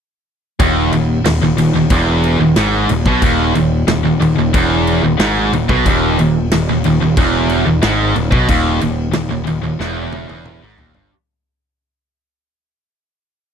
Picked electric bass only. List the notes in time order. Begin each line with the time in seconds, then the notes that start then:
0.60 D#1
0.92 D#1
1.24 D#1
1.42 D#1
1.58 D#1
1.74 D#1
1.91 E1
2.40 D#1
2.56 G#1
2.90 D#1
3.06 B1
3.22 D#1
3.55 D#1
3.87 D#1
4.04 D#1
4.20 D#1
4.37 D#1
4.55 E1
5.03 D#1
5.19 G#1
5.53 D#1
5.70 B1
5.86 D#1
6.20 D#1
6.53 D#1
6.70 D#1
6.86 D#1
7.02 D#1
7.17 E1
7.67 D#1
7.83 G#1
8.16 D#1
8.33 B1
8.49 D#1
8.82 D#1
9.14 D#1
9.31 D#1
9.47 D#1
9.63 D#1
9.80 E1
10.29 E1
10.62 G#1
10.79 D#1
10.94 G1